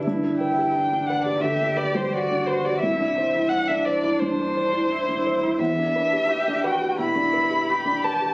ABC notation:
X:1
M:4/4
L:1/16
Q:1/4=86
K:Em
V:1 name="Violin"
z2 g4 f d e2 d c d2 c d | e4 f e d2 c8 | e6 g2 b6 a2 |]
V:2 name="Cello"
E4 D4 G4 F4 | E2 C2 D8 E4 | B,2 D2 G2 F2 E4 G4 |]
V:3 name="Felt piano"
G,, D B G2 D B G D, D B G,2 D B G | C,, D c E2 D c E G,, D c E2 D c E | E,, D B G2 D B G B,, D B G2 D B G |]
V:4 name="Sub bass" clef=bass
G,,,16 | C,,16 | E,,,16 |]